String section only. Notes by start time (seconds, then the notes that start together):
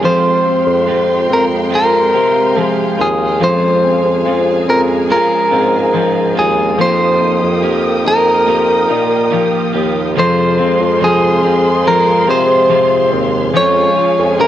Already playing: F5
0.03 G#3 G5 C6
3.40 G#4 G#5
6.79 A#4 G5 D#6
10.17 G#4 C5 F5 C6
13.55 C#4 G#4 G#5